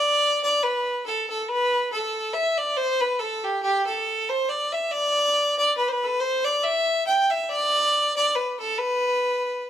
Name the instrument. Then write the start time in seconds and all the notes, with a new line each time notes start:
fiddle
Already playing: D5
0.43 D5
0.63 B4
1.06 A4
1.30 A4
1.42 A4
1.49 B4
1.92 A4
2.34 E5
2.57 D5
2.77 C5
3.01 B4
3.19 A4
3.44 G4
3.62 G4
3.86 A4
4.29 C5
4.49 D5
4.72 E5
4.91 D5
5.58 D5
5.77 B4
5.88 B4 C5
6.03 A4 B4
6.20 C5
6.44 D5
6.63 E5
7.06 G5
7.30 E5
7.43 E5
7.49 D5
8.16 D5
8.35 B4
8.59 A4
8.78 B4